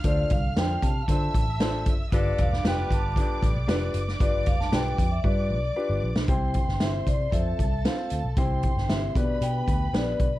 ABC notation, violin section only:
X:1
M:4/4
L:1/8
Q:1/4=115
K:Gmix
V:1 name="Violin section"
[ff']4 [ee']4 | [dd']8- | [dd']8 | [cc']4 [Aa]4 |
[cc']3 [Bb]4- [Bb] |]